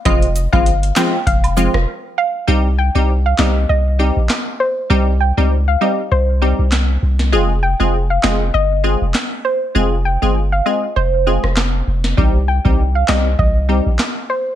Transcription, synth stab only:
X:1
M:4/4
L:1/16
Q:"Swing 16ths" 1/4=99
K:Cm
V:1 name="Synth stab"
[F,A,CF] z2 [F,A,CF] z2 [F,A,CF] z3 [F,A,CF] z4 z | [G,CEG] z2 [G,CEG] z2 [G,CEG] z3 [G,CEG] z4 z | [G,CEG] z2 [G,CEG] z2 [G,CEG] z3 [G,CEG] z4 z | [A,CFA] z2 [A,CFA] z2 [A,CFA] z3 [A,CFA] z4 z |
[A,CFA] z2 [A,CFA] z2 [A,CFA] z3 [A,CFA] z4 z | [G,CEG] z2 [G,CEG] z2 [G,CEG] z3 [G,CEG] z4 z |]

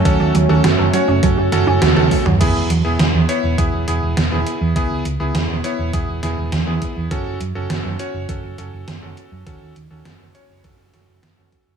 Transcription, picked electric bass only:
X:1
M:4/4
L:1/16
Q:1/4=102
K:E
V:1 name="Picked electric bass" clef=bass
D,, D,, D,, D,, F,,, F,,, z F,,, F,,, F,,, F,,, F,,, D,, D,, z D,, | E,,, E,,, E,, E,,, E,,, E,, z E,,, E,,, E,,, E,,, E,,, E,,, E,,, z E,, | C,, C,, C,, C,, E,,, E,,, z E,,, E,,, E,,, E,,, E,,, E,, E,, z E,, | F,,, F,,, F,, F,,, F,,, F,, z F,,, F,,, F,,, F,,, F,,, F,,, F,,, z F,, |
D,, D,, D,, D,, F,,, F,,, z F,,, F,,, F,,, F,,, F,,, F,,, F,,, z F,,, |]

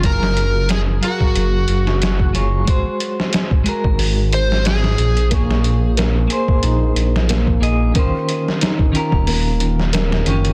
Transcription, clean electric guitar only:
X:1
M:4/4
L:1/8
Q:"Swing 16ths" 1/4=91
K:Bbm
V:1 name="Clean electric guitar"
[G,FAB]3 [G,ABf]4 [G,FAd] | [A,Gc]3 [A,GB]4 z | [B,Ad]3 [B,Ac]4 [B,Ae] | [E,DF=Gc]3 [E,DFGB]4 [E,DFGd] |]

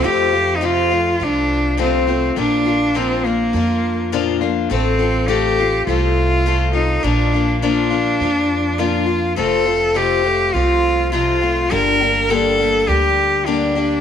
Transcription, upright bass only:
X:1
M:4/4
L:1/8
Q:1/4=103
K:F
V:1 name="Upright bass" clef=bass
F,,4 C,,4 | B,,,4 F,,4 | A,,,4 C,,4 | B,,,4 F,,4 |
F,,,4 C,,4 | G,,,4 D,,4 |]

